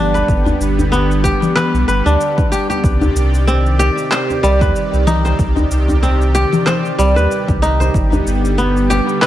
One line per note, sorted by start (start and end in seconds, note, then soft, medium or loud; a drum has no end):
0.00 0.24 G1 medium
0.00 2.80 D3 medium
0.00 1.66 G3 medium
0.00 2.80 G3 medium
0.00 0.23 B3 medium
0.00 2.80 B3 medium
0.00 1.64 D4 medium
0.00 2.80 G4 medium
0.00 0.14 B4 medium
0.14 1.37 B4 medium
0.14 djembe slap soft
0.14 djembe tone medium
0.14 shaker soft
0.28 0.54 G1 loud
0.28 kick loud
0.28 shaker soft
0.46 djembe tone medium
0.46 djembe bass loud
0.46 shaker soft
0.60 1.35 G1 medium
0.60 shaker medium
0.79 djembe bass medium
0.79 shaker soft
0.92 2.78 B3 medium
0.92 djembe tone medium
0.92 shaker soft
1.11 shaker soft
1.24 2.51 G4 loud
1.24 kick medium
1.24 djembe slap medium
1.24 shaker medium
1.42 low conga medium
1.42 shaker soft
1.56 1.88 B4 loud
1.56 clap medium
1.56 low conga medium
1.56 shaker soft
1.74 1.85 B1 medium
1.74 shaker soft
1.88 2.02 G1 medium
1.88 3.11 B4 medium
1.88 shaker medium
2.06 2.17 D2 loud
2.06 3.74 D4 medium
2.06 djembe tone medium
2.06 shaker soft
2.21 shaker medium
2.38 kick loud
2.38 djembe slap soft
2.38 djembe tone medium
2.38 shaker soft
2.52 2.69 G4 loud
2.52 shaker medium
2.70 3.79 G4 medium
2.70 djembe tone medium
2.70 shaker soft
2.84 3.10 C2 loud
2.84 7.90 C3 medium
2.84 7.90 D#3 medium
2.84 9.27 G4 medium
2.84 7.90 D5 medium
2.84 kick loud
2.84 shaker soft
3.01 djembe tone medium
3.01 djembe bass medium
3.01 shaker soft
3.16 3.90 C2 medium
3.16 shaker medium
3.34 shaker soft
3.47 4.67 C4 medium
3.47 djembe tone medium
3.47 shaker soft
3.66 shaker soft
3.79 5.21 G4 loud
3.79 djembe slap medium
3.79 shaker medium
3.98 shaker soft
4.11 4.67 C5 loud
4.11 clap medium
4.11 shaker soft
4.30 djembe tone medium
4.30 shaker soft
4.43 4.63 C2 medium
4.43 6.77 G3 medium
4.43 shaker medium
4.61 4.72 D#2 medium
4.61 5.31 B4 medium
4.61 kick loud
4.61 djembe slap soft
4.61 shaker soft
4.76 shaker soft
4.93 5.34 C2 medium
4.93 djembe slap soft
4.93 shaker soft
5.07 6.69 D#4 loud
5.07 low conga medium
5.07 shaker medium
5.25 6.44 C5 medium
5.25 djembe slap soft
5.25 djembe tone medium
5.25 shaker soft
5.39 5.65 C2 loud
5.39 kick loud
5.39 shaker soft
5.56 djembe tone medium
5.56 djembe bass loud
5.56 shaker soft
5.71 6.45 C2 medium
5.71 shaker medium
5.88 djembe bass medium
5.88 shaker soft
6.03 7.22 C4 medium
6.03 djembe tone medium
6.03 shaker soft
6.21 shaker soft
6.35 7.76 G4 loud
6.35 djembe slap medium
6.35 shaker medium
6.53 low conga medium
6.53 shaker soft
6.66 7.22 C5 loud
6.66 clap medium
6.66 low conga medium
6.66 shaker soft
6.85 shaker soft
6.98 7.18 C2 loud
6.98 7.99 G3 medium
6.98 shaker medium
7.16 7.27 D#2 medium
7.16 7.86 B4 medium
7.16 djembe tone medium
7.16 shaker soft
7.31 shaker soft
7.48 7.90 C2 medium
7.48 kick loud
7.48 djembe slap soft
7.48 djembe tone medium
7.48 shaker soft
7.62 9.24 D#4 loud
7.62 shaker medium
7.80 8.64 C5 medium
7.80 djembe tone medium
7.80 shaker soft
7.94 8.20 G1 loud
7.94 9.27 D3 medium
7.94 9.27 G3 medium
7.94 9.27 B3 medium
7.94 kick loud
7.94 shaker soft
8.12 djembe tone medium
8.12 djembe bass loud
8.12 shaker soft
8.26 9.01 G1 medium
8.26 shaker medium
8.45 shaker soft
8.58 9.27 B3 medium
8.58 djembe tone medium
8.58 shaker soft
8.77 shaker soft
8.90 9.27 G4 loud
8.90 djembe slap medium
8.90 shaker medium
9.09 shaker soft
9.22 9.27 B4 loud
9.22 clap medium
9.22 shaker soft